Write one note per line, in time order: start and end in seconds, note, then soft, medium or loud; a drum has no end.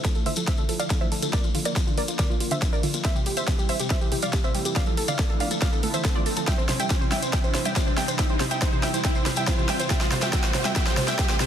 0.00 riser medium
0.04 0.11 F3 medium
0.04 0.13 A4 medium
0.04 kick loud
0.04 snare soft
0.04 closed hi-hat medium
0.04 maracas medium
0.15 0.23 A4 medium
0.15 maracas soft
0.26 0.30 D3 medium
0.26 0.34 C5 medium
0.26 0.34 E5 medium
0.26 open hi-hat medium
0.36 0.43 F3 medium
0.36 0.45 A4 medium
0.36 closed hi-hat medium
0.36 maracas medium
0.47 0.56 C5 medium
0.47 0.56 E5 medium
0.47 kick loud
0.47 snare soft
0.47 closed hi-hat medium
0.47 maracas medium
0.57 0.62 D3 loud
0.57 0.66 A4 medium
0.57 maracas soft
0.69 0.75 F3 medium
0.69 0.77 A4 medium
0.69 open hi-hat loud
0.79 0.88 D5 medium
0.79 0.88 F5 medium
0.79 closed hi-hat medium
0.79 maracas medium
0.90 0.95 D3 medium
0.90 0.98 A4 medium
0.90 kick loud
0.90 snare soft
0.90 closed hi-hat medium
0.90 maracas medium
1.01 1.07 F3 medium
1.01 1.09 C5 medium
1.01 1.09 E5 medium
1.01 maracas soft
1.12 1.20 A4 medium
1.12 open hi-hat medium
1.22 1.27 D3 loud
1.22 1.30 A4 medium
1.22 closed hi-hat medium
1.22 maracas medium
1.33 1.39 A#3 medium
1.33 1.41 A#4 medium
1.33 1.41 D5 loud
1.33 kick loud
1.33 snare soft
1.33 closed hi-hat medium
1.33 maracas medium
1.44 1.52 F4 medium
1.44 maracas soft
1.55 1.59 D3 loud
1.55 1.63 F4 medium
1.55 open hi-hat loud
1.65 1.72 A#3 medium
1.65 1.73 A#4 medium
1.65 1.73 D5 medium
1.65 closed hi-hat medium
1.65 maracas medium
1.76 1.84 F4 medium
1.76 kick loud
1.76 snare medium
1.76 closed hi-hat medium
1.76 maracas medium
1.87 1.91 D3 loud
1.87 1.95 F4 medium
1.87 maracas soft
1.98 2.04 A#3 medium
1.98 2.06 A#4 medium
1.98 2.06 D5 medium
1.98 open hi-hat medium
2.08 2.16 F4 medium
2.08 closed hi-hat medium
2.08 maracas medium
2.19 2.23 D3 loud
2.19 2.27 A#4 medium
2.19 2.27 D5 medium
2.19 kick loud
2.19 snare medium
2.19 closed hi-hat medium
2.19 maracas medium
2.30 2.36 A#3 medium
2.30 2.38 F4 medium
2.30 maracas soft
2.40 2.49 F4 medium
2.40 open hi-hat loud
2.51 2.55 D3 loud
2.51 2.59 C5 medium
2.51 2.59 E5 medium
2.51 closed hi-hat medium
2.51 maracas medium
2.62 2.68 A#3 medium
2.62 2.70 F4 medium
2.62 kick loud
2.62 snare medium
2.62 closed hi-hat medium
2.62 maracas medium
2.73 2.81 A#4 medium
2.73 2.81 D5 medium
2.73 maracas soft
2.83 2.87 D3 loud
2.83 2.91 F4 medium
2.83 open hi-hat medium
2.94 3.00 A#3 medium
2.94 3.02 F4 medium
2.94 closed hi-hat medium
2.94 maracas medium
3.05 3.13 C5 medium
3.05 3.13 E5 loud
3.05 kick loud
3.05 snare medium
3.05 closed hi-hat medium
3.05 maracas medium
3.15 3.20 C3 loud
3.15 3.24 G4 medium
3.15 maracas soft
3.26 3.32 G3 medium
3.26 3.34 G4 medium
3.26 open hi-hat loud
3.37 3.45 C5 medium
3.37 3.45 E5 medium
3.37 closed hi-hat medium
3.37 maracas medium
3.47 3.52 C3 medium
3.47 kick loud
3.47 snare medium
3.47 closed hi-hat medium
3.47 maracas medium
3.58 3.64 G3 medium
3.58 3.66 G4 medium
3.58 maracas soft
3.69 3.77 C5 medium
3.69 3.77 E5 medium
3.69 open hi-hat medium
3.80 3.84 C3 loud
3.80 3.88 G4 medium
3.80 closed hi-hat medium
3.80 maracas medium
3.90 3.97 G3 medium
3.90 3.99 C5 medium
3.90 3.99 E5 medium
3.90 kick loud
3.90 snare medium
3.90 closed hi-hat medium
3.90 maracas medium
4.01 4.09 G4 medium
4.01 maracas soft
4.12 4.16 C3 loud
4.12 4.20 G4 medium
4.12 open hi-hat loud
4.22 4.29 G3 medium
4.22 4.31 D5 medium
4.22 4.31 F5 medium
4.22 closed hi-hat medium
4.22 maracas medium
4.33 4.41 G4 medium
4.33 kick loud
4.33 snare medium
4.33 closed hi-hat medium
4.33 maracas medium
4.44 4.48 C3 loud
4.44 4.52 C5 medium
4.44 4.52 E5 medium
4.44 maracas soft
4.55 4.61 G3 medium
4.55 4.63 G4 medium
4.55 open hi-hat medium
4.65 4.73 G4 medium
4.65 closed hi-hat medium
4.65 maracas medium
4.76 4.80 D3 loud
4.76 4.84 D5 medium
4.76 4.84 F5 loud
4.76 kick loud
4.76 snare medium
4.76 closed hi-hat medium
4.76 maracas medium
4.86 4.93 F3 medium
4.86 4.95 A4 medium
4.86 maracas soft
4.97 5.05 A4 medium
4.97 open hi-hat loud
5.08 5.12 D3 loud
5.08 5.16 D5 medium
5.08 5.16 F5 medium
5.08 closed hi-hat medium
5.08 maracas medium
5.18 5.25 F3 medium
5.18 5.27 A4 medium
5.18 kick loud
5.18 snare medium
5.18 closed hi-hat medium
5.18 maracas medium
5.29 5.38 A4 medium
5.29 maracas soft
5.40 5.45 D3 loud
5.40 5.48 D5 medium
5.40 5.48 F5 medium
5.40 open hi-hat medium
5.51 5.57 F3 medium
5.51 5.59 A4 medium
5.51 closed hi-hat medium
5.51 maracas medium
5.62 5.70 D5 medium
5.62 5.70 F5 medium
5.62 kick loud
5.62 snare medium
5.62 closed hi-hat medium
5.62 maracas medium
5.72 5.77 D3 loud
5.72 5.80 A4 medium
5.72 maracas soft
5.83 5.89 A3 medium
5.83 5.91 A4 medium
5.83 open hi-hat loud
5.94 5.98 E3 medium
5.94 6.02 C5 medium
5.94 6.02 E5 medium
5.94 closed hi-hat medium
5.94 maracas medium
6.05 6.11 D3 loud
6.05 6.13 A4 medium
6.05 kick loud
6.05 snare medium
6.05 closed hi-hat medium
6.05 maracas medium
6.15 6.20 D3 medium
6.15 6.23 F4 medium
6.15 6.23 D5 medium
6.15 maracas soft
6.26 6.34 A4 medium
6.26 open hi-hat medium
6.36 6.41 F3 medium
6.36 6.45 A4 medium
6.36 closed hi-hat medium
6.36 maracas medium
6.47 6.54 G3 medium
6.47 6.56 E5 medium
6.47 6.56 G5 medium
6.47 kick loud
6.47 snare medium
6.47 closed hi-hat medium
6.47 maracas medium
6.58 6.66 C5 medium
6.58 maracas soft
6.69 6.73 C3 medium
6.69 6.77 C5 medium
6.69 snare medium
6.69 open hi-hat loud
6.69 high conga medium
6.80 6.86 G3 medium
6.80 6.88 E5 medium
6.80 6.88 G5 medium
6.80 closed hi-hat medium
6.80 maracas medium
6.90 6.98 C5 medium
6.90 kick loud
6.90 snare medium
6.90 closed hi-hat medium
6.90 maracas medium
7.01 7.05 C3 medium
7.01 7.09 C5 medium
7.01 maracas soft
7.12 7.18 G3 medium
7.12 7.20 E5 medium
7.12 7.20 G5 medium
7.12 snare medium
7.12 open hi-hat medium
7.12 high conga medium
7.22 7.30 C5 medium
7.22 closed hi-hat medium
7.22 maracas medium
7.33 7.39 G3 medium
7.33 7.41 E5 medium
7.33 7.41 G5 medium
7.33 kick loud
7.33 snare medium
7.33 closed hi-hat medium
7.44 7.52 C5 medium
7.44 maracas soft
7.55 7.59 C3 loud
7.55 7.63 C5 medium
7.55 snare medium
7.55 open hi-hat loud
7.65 7.72 G3 medium
7.65 7.73 E5 medium
7.65 7.73 G5 medium
7.65 closed hi-hat medium
7.65 maracas medium
7.76 7.84 C5 medium
7.76 kick loud
7.76 snare medium
7.76 closed hi-hat medium
7.76 high conga medium
7.76 maracas medium
7.87 7.91 C3 medium
7.87 7.95 C5 medium
7.87 maracas soft
7.97 8.04 G3 medium
7.97 8.05 E5 medium
7.97 8.05 G5 medium
7.97 snare medium
7.97 open hi-hat medium
8.08 8.16 C5 medium
8.08 closed hi-hat medium
8.08 maracas medium
8.19 8.25 G3 medium
8.19 8.27 E5 medium
8.19 8.27 G5 medium
8.19 kick loud
8.19 snare medium
8.19 closed hi-hat medium
8.19 maracas medium
8.29 8.38 C5 medium
8.29 maracas soft
8.40 8.45 C3 medium
8.40 8.48 C5 medium
8.40 snare medium
8.40 open hi-hat loud
8.40 high conga medium
8.51 8.57 G3 medium
8.51 8.59 E5 medium
8.51 8.59 G5 medium
8.51 closed hi-hat medium
8.51 maracas medium
8.61 8.70 C5 medium
8.61 kick loud
8.61 snare medium
8.61 closed hi-hat medium
8.61 maracas medium
8.72 8.77 C3 loud
8.72 8.81 C5 medium
8.72 maracas soft
8.83 8.89 G3 medium
8.83 8.91 E5 medium
8.83 8.91 G5 medium
8.83 snare medium
8.83 open hi-hat medium
8.83 high conga medium
8.94 9.02 C5 medium
8.94 closed hi-hat medium
8.94 maracas medium
9.04 9.11 G3 medium
9.04 9.13 E5 medium
9.04 9.13 G5 loud
9.04 kick loud
9.04 snare medium
9.04 closed hi-hat medium
9.04 maracas medium
9.15 9.23 C5 medium
9.15 maracas soft
9.26 9.30 C3 loud
9.26 9.34 C5 medium
9.26 snare medium
9.26 open hi-hat loud
9.36 9.43 G3 medium
9.36 9.45 E5 medium
9.36 9.45 G5 medium
9.36 closed hi-hat medium
9.36 maracas medium
9.47 9.56 C5 medium
9.47 kick loud
9.47 snare medium
9.47 closed hi-hat medium
9.47 maracas medium
9.58 9.62 C3 medium
9.58 9.66 C5 medium
9.58 maracas soft
9.69 9.75 G3 medium
9.69 9.77 E5 medium
9.69 9.77 G5 medium
9.69 snare medium
9.69 open hi-hat medium
9.80 9.88 C5 medium
9.80 closed hi-hat medium
9.80 maracas medium
9.90 9.97 G3 medium
9.90 9.98 E5 medium
9.90 9.98 G5 medium
9.90 kick loud
9.90 snare medium
9.90 closed hi-hat medium
9.90 maracas medium
10.01 10.09 C5 medium
10.01 snare medium
10.01 maracas soft
10.12 10.16 C3 loud
10.12 10.20 C5 medium
10.12 snare medium
10.12 open hi-hat loud
10.12 high conga medium
10.21 10.29 G3 medium
10.21 10.31 E5 medium
10.21 10.31 G5 medium
10.21 snare medium
10.21 closed hi-hat medium
10.21 maracas medium
10.33 10.39 G3 medium
10.33 10.41 E5 medium
10.33 10.41 G5 loud
10.33 kick loud
10.33 snare medium
10.33 closed hi-hat medium
10.33 maracas medium
10.44 10.52 C5 medium
10.44 snare medium
10.44 maracas soft
10.54 10.59 C3 loud
10.54 10.63 C5 medium
10.54 snare medium
10.54 open hi-hat medium
10.54 high conga medium
10.65 10.71 G3 medium
10.65 10.73 E5 medium
10.65 10.73 G5 medium
10.65 snare medium
10.65 closed hi-hat medium
10.65 maracas medium
10.75 10.82 G3 medium
10.75 10.84 E5 medium
10.75 10.84 G5 loud
10.75 kick loud
10.75 snare loud
10.75 closed hi-hat medium
10.75 maracas medium
10.87 10.95 C5 medium
10.87 snare medium
10.87 maracas soft
10.97 11.02 C3 loud
10.97 11.06 C5 medium
10.97 snare medium
10.97 open hi-hat loud
11.08 11.14 G3 medium
11.08 11.16 E5 medium
11.08 11.16 G5 medium
11.08 snare medium
11.08 closed hi-hat medium
11.08 maracas medium
11.19 11.25 G3 medium
11.19 11.27 G5 loud
11.19 kick loud
11.19 snare loud
11.19 closed hi-hat medium
11.19 high conga medium
11.19 maracas medium
11.29 11.38 C5 medium
11.29 snare medium
11.29 maracas soft
11.40 11.45 C3 loud
11.40 11.46 C5 medium
11.40 snare loud
11.40 open hi-hat medium